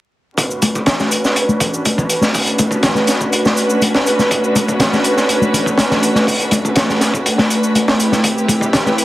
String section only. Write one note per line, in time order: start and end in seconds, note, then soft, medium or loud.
0.38 9.05 A3 medium
0.38 7.96 C#4 medium
0.38 7.96 D4 medium
0.38 7.96 F#4 medium
0.38 7.96 B4 medium
7.99 9.05 C4 medium
7.99 9.05 E4 medium
7.99 9.05 G4 medium
7.99 9.05 B4 medium